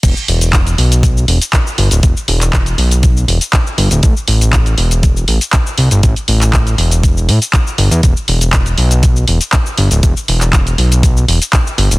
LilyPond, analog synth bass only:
\new Staff \with { instrumentName = "Analog synth bass" } { \clef bass \time 4/4 \key e \minor \tempo 4 = 120 e,,16 r16 e,,4 b,,4 e,,16 r8. g,,16 d,,16 | e,,16 r16 e,,4 b,,4 e,,16 r8. g,,16 d,,16 | a,,16 r16 a,,4 e,,4 a,,16 r8. c,16 g,,16 | a,,16 r16 a,,4 e,,4 a,16 r8. g,,16 e,16 |
e,,16 r16 e,,4 b,,4 e,,16 r8. g,,16 d,,16 | e,,16 r16 e,,4 b,,4 e,,16 r8. g,,16 d,,16 | }